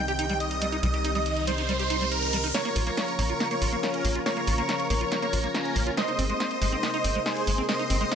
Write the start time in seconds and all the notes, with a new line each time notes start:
Already playing: C2 C3 D#3 G3 D#4, riser
0.08 G4 G5, closed hi-hat
0.19 D#4, closed hi-hat
0.29 G3, closed hi-hat
0.40 D#5, closed hi-hat
0.51 closed hi-hat
0.62 G3, closed hi-hat
0.72 D#4, closed hi-hat
0.83 C2 G3 D#5, closed hi-hat
0.94 G4, closed hi-hat
1.04 D#4, closed hi-hat
1.15 G3 D#5, closed hi-hat
1.26 closed hi-hat
1.37 closed hi-hat
1.47 G3 C5, closed hi-hat
1.58 D#4, closed hi-hat
1.69 G3, closed hi-hat
1.80 G4 C5, closed hi-hat
1.90 D#4, closed hi-hat
2.01 G3, closed hi-hat
2.12 A#4, closed hi-hat
2.22 closed hi-hat
2.33 G3, closed hi-hat
2.44 D#4, closed hi-hat
2.54 C#3 F3 A#3 F4 A#4 C#5, snare, closed hi-hat
2.65 A#3, closed hi-hat
2.76 A#1 F4, open hi-hat
2.87 A#3 A#4 C#5, closed hi-hat
2.97 snare, closed hi-hat
3.08 closed hi-hat
3.19 A#1 A#3 A#4 C#5, open hi-hat
3.30 F4, closed hi-hat
3.40 A#3, snare, closed hi-hat
3.51 A#3 A#4 C#5, closed hi-hat
3.62 A#1 F4, open hi-hat
3.72 A#3, closed hi-hat
3.83 C#4 A#4, snare, closed hi-hat
3.94 closed hi-hat
4.05 A#1 A#3, open hi-hat
4.15 F4, closed hi-hat
4.26 A#3 A#4 C#5, snare, closed hi-hat
4.37 A#3, closed hi-hat
4.47 A#1 F4, open hi-hat
4.58 A#3 A#4 C#5, closed hi-hat
4.69 snare, closed hi-hat
4.80 closed hi-hat
4.90 A#1 A#3 A#4 C#5, open hi-hat
5.01 F4, closed hi-hat
5.12 A#3, snare, closed hi-hat
5.22 A#3 A#4 C#5, closed hi-hat
5.33 A#1 F4, open hi-hat
5.44 A#3, closed hi-hat
5.54 C#4 A#4, snare, closed hi-hat
5.65 closed hi-hat
5.76 A#1 A#3, open hi-hat
5.87 F4, closed hi-hat
5.97 C3 G#3 D#4 C5 D#5, snare, closed hi-hat
6.08 D#4, closed hi-hat
6.19 G#1 C4, open hi-hat
6.29 G#3 C5 D#5, closed hi-hat
6.40 snare, closed hi-hat
6.51 closed hi-hat
6.62 G#1 G#3 C5 D#5, open hi-hat
6.72 C4, closed hi-hat
6.83 G#3, snare, closed hi-hat
6.94 D#4 C5 D#5, closed hi-hat
7.04 G#1 C4, open hi-hat
7.15 G#3, closed hi-hat
7.26 G#4 C5, snare, closed hi-hat
7.37 closed hi-hat
7.47 G#1 G#3, open hi-hat
7.58 C4, closed hi-hat
7.69 G#3 C5 D#5, snare, closed hi-hat
7.79 D#4, closed hi-hat
7.90 G#1 C4, open hi-hat
8.01 G#3 C5 D#5, closed hi-hat
8.12 snare, closed hi-hat